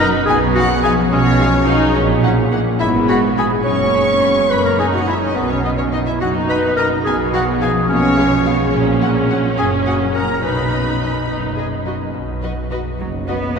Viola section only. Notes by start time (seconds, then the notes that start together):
Already playing: D#4
0.28 B3
1.11 G#3
1.39 G#3
1.66 D#4
1.94 C#4
2.22 C#4
2.51 A#3
2.79 B3
3.65 C#4
4.51 A#3
4.80 D#4
5.08 C#4
6.21 D#4
7.04 B3
7.89 A#3
8.18 G#3
8.46 B3
8.75 C#4
10.43 D#4
11.28 D#4
11.56 G#4
11.86 F#4
12.43 F#4
12.71 F#4
13.28 F#4
13.55 F#4